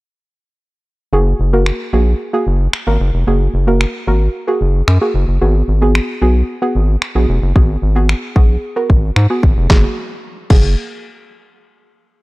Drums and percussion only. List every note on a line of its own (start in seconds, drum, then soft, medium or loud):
1.66 finger snap loud
2.73 finger snap loud
3.81 finger snap loud
4.88 finger snap loud
5.95 finger snap loud
7.02 finger snap loud
7.56 kick loud
8.09 finger snap loud
8.36 kick medium
8.90 kick medium
9.16 finger snap loud
9.43 kick medium
9.70 kick loud
9.70 snare medium
10.50 kick loud
10.50 crash medium